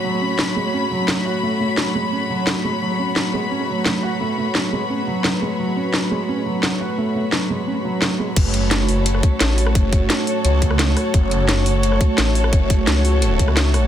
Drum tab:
CC |----------------|----------------|----------------|----------------|
HH |----------------|----------------|----------------|----------------|
SD |----o-------o---|----o-------o---|----o-------o---|----o-------o---|
BD |----------------|----------------|----------------|----------------|

CC |----------------|----------------|x---------------|----------------|
HH |----------------|----------------|x-x-x-o-x-x-x-o-|x-x-x-o-x-x-x-o-|
SD |----o-------o---|----o-------o---|----o----r--o--r|----o------ro-r-|
BD |----------------|----------------|o---------o-----|o-o-------o-----|

CC |----------------|----------------|
HH |x-x-x-o-x-x-x-o-|x-x-x-o-x-x-x-o-|
SD |----o----r--o--r|----o------ro-r-|
BD |o---------o-----|o-o-------o-----|